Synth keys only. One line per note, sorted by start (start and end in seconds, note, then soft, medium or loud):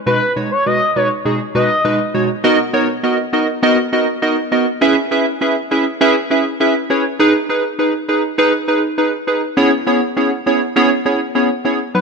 0.06 0.20 B2 medium
0.06 0.20 G#3 medium
0.06 0.21 D#4 medium
0.06 0.21 F#4 medium
0.06 0.21 B4 loud
0.36 0.50 B2 medium
0.36 0.50 G#3 medium
0.36 0.50 D#4 medium
0.36 0.50 F#4 medium
0.36 0.50 C#5 medium
0.66 0.80 B2 medium
0.66 0.80 G#3 medium
0.66 0.80 D#4 medium
0.66 0.80 F#4 medium
0.66 0.80 B4 medium
0.96 1.10 B2 medium
0.96 1.10 G#3 medium
0.96 1.10 D#4 medium
0.96 1.10 F#4 medium
0.96 1.10 B4 medium
1.25 1.39 B2 medium
1.25 1.39 G#3 medium
1.25 1.39 D#4 medium
1.25 1.39 F#4 medium
1.25 1.40 G#4 loud
1.55 1.69 B2 medium
1.55 1.69 G#3 medium
1.55 1.69 D#4 medium
1.55 1.69 F#4 medium
1.55 1.69 B4 loud
1.84 1.99 B2 medium
1.84 1.99 G#3 medium
1.84 1.99 D#4 medium
1.84 1.99 F#4 medium
1.84 1.99 B4 loud
2.14 2.28 B2 medium
2.14 2.28 G#3 medium
2.14 2.28 D#4 medium
2.14 2.28 F#4 medium
2.14 2.29 C#5 medium
2.44 2.58 B3 loud
2.44 2.58 D#4 loud
2.44 2.58 F#4 loud
2.44 2.58 A#4 loud
2.44 2.58 D#5 loud
2.73 2.88 B3 loud
2.73 2.88 D#4 medium
2.73 2.88 F#4 medium
2.73 2.88 A#4 medium
2.73 2.88 C#5 loud
3.03 3.17 B3 medium
3.03 3.18 D#4 medium
3.03 3.18 F#4 medium
3.03 3.18 A#4 medium
3.03 3.18 D#5 loud
3.33 3.47 B3 medium
3.33 3.47 D#4 medium
3.33 3.47 F#4 medium
3.33 3.47 A#4 medium
3.33 3.47 D#5 medium
3.63 3.77 B3 loud
3.63 3.77 D#4 loud
3.63 3.77 F#4 loud
3.63 3.77 A#4 loud
3.63 3.77 D#5 loud
3.92 4.07 B3 medium
3.92 4.07 D#4 medium
3.92 4.07 F#4 medium
3.92 4.07 A#4 medium
3.92 4.07 D#5 loud
4.22 4.36 B3 medium
4.22 4.36 D#4 medium
4.22 4.36 F#4 medium
4.22 4.36 A#4 medium
4.22 4.36 D#5 loud
4.52 4.66 B3 medium
4.52 4.66 D#4 medium
4.52 4.66 F#4 medium
4.52 4.66 A#4 medium
4.52 4.66 D#5 medium
4.81 4.96 C#4 loud
4.81 4.96 E4 loud
4.81 4.96 G#4 loud
4.81 4.96 B4 loud
4.81 4.96 E5 loud
5.11 5.25 C#4 medium
5.11 5.25 E4 medium
5.11 5.25 G#4 medium
5.11 5.26 B4 medium
5.11 5.26 E5 loud
5.41 5.55 C#4 medium
5.41 5.55 E4 medium
5.41 5.55 G#4 medium
5.41 5.55 B4 medium
5.41 5.55 E5 loud
5.71 5.85 C#4 medium
5.71 5.85 E4 medium
5.71 5.85 G#4 medium
5.71 5.85 B4 medium
5.71 5.85 E5 loud
6.01 6.15 C#4 loud
6.01 6.15 E4 loud
6.01 6.15 G#4 loud
6.01 6.15 B4 loud
6.01 6.15 E5 loud
6.30 6.44 C#4 medium
6.30 6.44 E4 medium
6.30 6.45 G#4 medium
6.30 6.45 B4 medium
6.30 6.45 E5 loud
6.60 6.74 C#4 medium
6.60 6.74 E4 medium
6.60 6.74 G#4 medium
6.60 6.74 B4 medium
6.60 6.74 E5 loud
6.90 7.04 C#4 medium
6.90 7.04 E4 medium
6.90 7.04 G#4 medium
6.90 7.04 B4 medium
6.90 7.04 C#5 loud
7.19 7.33 D#4 loud
7.19 7.34 G#4 loud
7.19 7.34 B4 loud
7.49 7.63 D#4 medium
7.49 7.63 G#4 medium
7.49 7.64 B4 loud
7.79 7.93 D#4 medium
7.79 7.93 G#4 medium
7.79 7.93 B4 loud
8.08 8.23 D#4 medium
8.08 8.23 G#4 medium
8.08 8.23 B4 loud
8.38 8.52 D#4 loud
8.38 8.52 G#4 loud
8.38 8.52 B4 loud
8.68 8.82 D#4 medium
8.68 8.82 G#4 medium
8.68 8.82 B4 loud
8.98 9.12 D#4 medium
8.98 9.12 G#4 medium
8.98 9.12 B4 loud
9.27 9.41 D#4 medium
9.27 9.41 G#4 medium
9.27 9.41 B4 loud
9.57 9.71 B3 loud
9.57 9.71 C#4 loud
9.57 9.71 E4 loud
9.57 9.71 G#4 loud
9.57 9.71 C#5 loud
9.87 10.01 B3 medium
9.87 10.01 C#4 medium
9.87 10.01 E4 medium
9.87 10.01 G#4 medium
9.87 10.01 C#5 loud
10.17 10.31 B3 medium
10.17 10.31 C#4 medium
10.17 10.31 E4 medium
10.17 10.31 G#4 medium
10.17 10.31 C#5 medium
10.46 10.60 B3 medium
10.46 10.60 C#4 medium
10.46 10.60 E4 medium
10.46 10.60 G#4 medium
10.46 10.60 C#5 loud
10.76 10.90 B3 loud
10.76 10.90 C#4 loud
10.76 10.90 E4 loud
10.76 10.90 G#4 loud
10.76 10.90 C#5 loud
11.05 11.19 B3 medium
11.05 11.20 C#4 medium
11.05 11.20 E4 medium
11.05 11.20 G#4 medium
11.05 11.20 C#5 loud
11.35 11.49 B3 medium
11.35 11.49 C#4 medium
11.35 11.49 E4 medium
11.35 11.49 G#4 medium
11.35 11.49 C#5 loud
11.65 11.79 B3 medium
11.65 11.79 C#4 medium
11.65 11.79 E4 medium
11.65 11.79 G#4 medium
11.65 11.79 C#5 loud
11.94 12.01 F#3 medium
11.94 12.01 B3 medium
11.94 12.01 D#4 medium
11.94 12.01 B4 loud